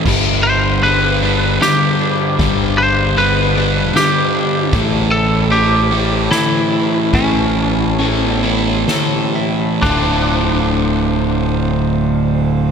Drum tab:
CC |x-----|------|------|------|
RD |--x-xx|x-x-x-|x-x--x|x-x-x-|
SD |----o-|----o-|----o-|----o-|
BD |o-----|o-----|o-----|o-----|

CC |x-----|
RD |------|
SD |------|
BD |o-----|